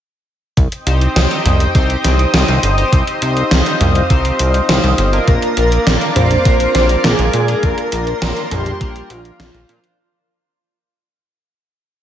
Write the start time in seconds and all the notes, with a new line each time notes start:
0.57 C2 C5 D#5 G5 D#6, kick, closed hi-hat
0.72 closed hi-hat
0.87 C2 C4 D#4 G4 C5, closed hi-hat
1.01 closed hi-hat
1.16 C2, snare, closed hi-hat
1.31 C4 D#4 G4 C5, closed hi-hat
1.46 C2, closed hi-hat, mid tom
1.60 closed hi-hat
1.75 C2 C4 D#4 G4 C5, kick, closed hi-hat
1.90 closed hi-hat
2.04 C2, snare, closed hi-hat
2.19 closed hi-hat
2.34 C2 C4 D#4 G4 C5, snare, closed hi-hat
2.48 C2, closed hi-hat
2.63 G1, closed hi-hat
2.78 C4 D#4 G4 C5, closed hi-hat
2.93 C2 F5, kick, closed hi-hat
3.07 closed hi-hat
3.22 C2 C4 D#4 G4 C5, closed hi-hat
3.37 closed hi-hat
3.51 C2, snare, closed hi-hat
3.66 C4 D#4 G4 C5, closed hi-hat
3.81 C2, closed hi-hat, mid tom
3.95 closed hi-hat
4.10 C2 C4 D#4 G4 C5, kick, closed hi-hat
4.25 closed hi-hat
4.39 C2, closed hi-hat
4.54 closed hi-hat
4.69 C2 C4 D#4 G4 C5, snare, closed hi-hat
4.84 C2, closed hi-hat
4.98 G1, closed hi-hat
5.13 A#3 D4 F4 A#4, closed hi-hat
5.28 A#1 A#4 D5 D6, kick, closed hi-hat
5.42 closed hi-hat
5.57 A#1 A#3 D4 F4 A#4, closed hi-hat
5.72 closed hi-hat
5.87 A#1, snare, closed hi-hat
6.01 A#3 D4 F4 A#4, closed hi-hat
6.16 A#1 C5, closed hi-hat, mid tom
6.31 closed hi-hat
6.45 A#1 A#3 D4 F4 A#4, kick, closed hi-hat
6.60 closed hi-hat
6.75 A#1, snare, closed hi-hat
6.89 closed hi-hat
7.04 A#1 A#3 D4 F4 G#4 A#4, snare, closed hi-hat
7.19 A#1, closed hi-hat
7.33 A#2, closed hi-hat
7.48 A#3 D4 F4 A#4, closed hi-hat
7.63 A#1 A#4 C6, kick, closed hi-hat
7.78 closed hi-hat
7.92 A#1 A#3 D4 F4 A#4, closed hi-hat
8.07 closed hi-hat
8.22 A#1, snare, closed hi-hat
8.36 A#3 D4 F4 A#4, closed hi-hat
8.51 A#1 G4, closed hi-hat, mid tom
8.66 closed hi-hat
8.81 A#1 A#3 D4 F4 A#4, kick, closed hi-hat
8.96 closed hi-hat
9.10 A#1 F4, closed hi-hat
9.25 closed hi-hat
9.39 A#1 A#3 D4 F4 C5, snare, closed hi-hat
9.54 A#1, closed hi-hat
9.69 A#2, closed hi-hat
9.84 closed hi-hat